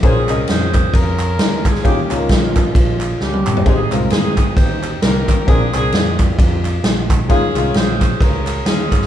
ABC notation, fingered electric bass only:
X:1
M:4/4
L:1/8
Q:"Swing" 1/4=132
K:Bbdor
V:1 name="Fingered electric bass" clef=bass
B,,, C,, F,,2 F,,2 E,, =D,, | E,, D,, B,,,2 B,,,2 D,, G,,, | A,,, C,, E,,2 E,,2 C,, =A,,, | B,,, C,, F,,2 F,,2 B,,,2 |
E,, C,, B,,,2 D,,2 E,, G,,, |]